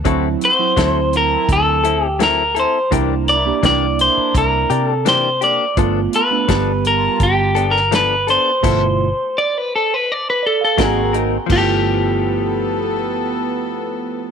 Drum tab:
CC |----------------|----------------|----------------|x---------------|
HH |x-x-x-x-x-x-x-x-|x-x-x-x-x-x-x-x-|x-x-x-x-x-x-x-x-|x-----------x-x-|
SD |----o-------o---|----o-------o---|----o------oo---|------------o---|
BD |o---o---o-------|o---o---o-------|o---o---o-------|o-----------o---|

CC |x---------------|
HH |----------------|
SD |----------------|
BD |o---------------|